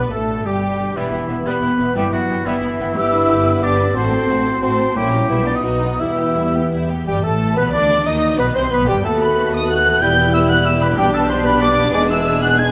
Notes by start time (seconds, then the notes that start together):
Already playing: B1 B2 B3 D4 G4 B4 D5
0.11 A1 A3 B3 A4 A5
0.30 G4
0.45 G1 G3 G4 D5 G5
0.63 B4
0.79 D4
0.95 E1 E2 E3 G3 B3 E4 G4 B4 E5
1.12 E1 B3 E4 G5
1.29 E1 B3 G4 E5
1.46 E1 G3 B3 B4 E5 B5
1.62 E1 B3 E4 B4 G5
1.78 E1 B3 E4 E5
1.95 G1 G2 G3 B3 E4 G4 E5 G5
2.12 G1 F#3 B3 E4 F#4 F#5 B5
2.29 G1 B3 B4 G5
2.45 G1 E3 G3 B3 E4 E5
2.62 G1 B3 E4 B4 B5
2.79 G1 B3 G5
2.96 G1 G2 B3 E4 G4 E5 D6 E6
3.14 D4 B4 B5
3.30 G1 B3 G4 D6
3.45 D4 B4 G5 B5
3.62 G1 B3 D4 G4 D5 D6
3.78 D4 G4 B4 B5
3.95 A1 A2 A3 C4 F#4 C5 A5 C6
4.12 C4 A4 C6
4.29 A1 A3 F#4 A5
4.46 C4 A4 F#5 C6
4.62 A1 A3 C4 F#4 C5 A5 C6
4.79 C4 F#4 A4 C6
4.95 A#1 A#2 G3 A#3 C#4 E4 G4 G5
5.12 C#4 E4 G4 E5 A#5
5.29 B1 B2 G3 B3 E4 E5
5.46 B3 D4 E4 G4 B4 D5 G5 D6
5.55 D#4 D#5 D#6
5.62 B1 B2 B3 D#4 F#4 D#5
5.81 B3 D#4 F#4 B4 F#5
5.99 E2 E3 G3 B3 E4 G4 E5 E6
6.17 B3 G4 G5
6.35 E2 G3 E4 B4 E5
6.54 B3 G4 G5
6.71 E2 G3 E4 B4 E5
6.89 E3 B3 G4 G5
6.94 B3
6.98 G4
7.03 G1 G4 B4 G5
7.07 G2 G3 G4 G5
7.23 A1 A2 A3 A4 A5
7.56 B1 B2 B3 B4 B5
7.73 D2 D3 D4 D5 D6
7.88 D#3
7.93 B3
7.98 F#4
8.02 D#2 D#3 B4
8.06 D#4 D#5 D#6
8.38 B1 B2 B3 B4 B5
8.55 C2 C3 C4 C5 C6
8.71 B1 B2 B3 B4 B5
8.87 G1 G2 D#3 G3 G4 G5
8.92 B3
9.01 D#2 A3 B3 F#4 A4 B4 A5
9.05 D#2 F#4 A4 A5
9.21 B4 B5
9.54 D#5 D#6
9.69 F#5 F#6
9.85 E3
9.89 B3
9.94 E4
9.98 E1 G3 E4 G4 G5 G6
10.02 E2 E4 G4 G6
10.33 E5 E6
10.49 F#5 F#6
10.65 E5 E6
10.80 B2 B4 B5
10.85 B3
10.89 D4
10.94 G3 D4 G4 B4 G5
10.98 B1 B2 G3 B3 D4 G5
11.14 A4 A5
11.29 C5 C6
11.45 B4 B5
11.61 G3 D4 D5 D6
11.76 E2
11.81 B3
11.85 D4
11.90 E1 D4 G#4 D5 D6
11.94 E2 G#3 D4 D6
12.09 E5 E6
12.42 F#5 F#6
12.58 G#3 D4 G#5 G#6